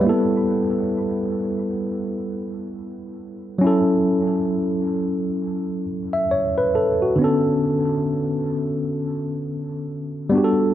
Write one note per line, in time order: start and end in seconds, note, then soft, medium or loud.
0.00 3.57 G3 medium
0.00 0.12 A#3 soft
0.00 0.29 B4 soft
0.07 3.61 B3 medium
0.07 3.59 E4 medium
0.07 3.61 A4 medium
3.58 6.25 F#3 medium
3.58 6.26 C#4 medium
3.64 6.28 E4 medium
3.64 5.84 A4 medium
6.13 6.30 E5 medium
6.31 6.57 C#5 medium
6.58 6.75 B4 medium
6.75 7.01 A4 medium
7.02 7.45 F#4 medium
7.16 10.27 D3 medium
7.16 10.29 B3 medium
7.22 10.30 C#4 medium
7.22 10.32 A4 medium
10.30 10.74 G3 medium
10.30 10.74 B3 medium
10.34 10.74 D4 medium
10.34 10.74 F#4 medium
10.38 10.44 G4 medium
10.44 10.74 A4 medium